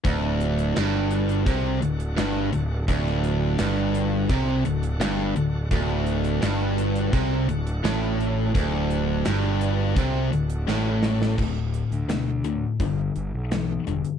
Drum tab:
CC |----------------|----------------|----------------|----------------|
HH |x-xxx-xxx-xxx-x-|x-x-x-x-x-xxx-x-|x-xxx-xxx-xxx-x-|x-x-x-x-x-xx----|
SD |----o-------o---|-o--o-------o---|----o-------o---|----o-------o-oo|
BD |o-------o-------|o-------o-------|o-------o-------|o-------o-------|

CC |x---------------|
HH |--xxx-x-x-x-x-xx|
SD |----o-------o---|
BD |o-------o-------|